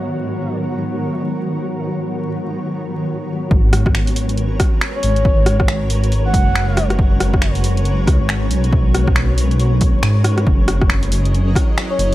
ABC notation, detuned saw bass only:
X:1
M:4/4
L:1/16
Q:"Swing 16ths" 1/4=138
K:G#m
V:1 name="Detuned saw bass" clef=bass
z16 | z16 | G,,,8- G,,,2 z4 G,,,2 | G,,,8- G,,,2 F,,,6- |
F,,,8- F,,,2 C,, G,,,3 B,,,2- | B,,,8- B,,,3 F,,, G,,4 | F,,,8- F,,,2 z4 F,,,2 |]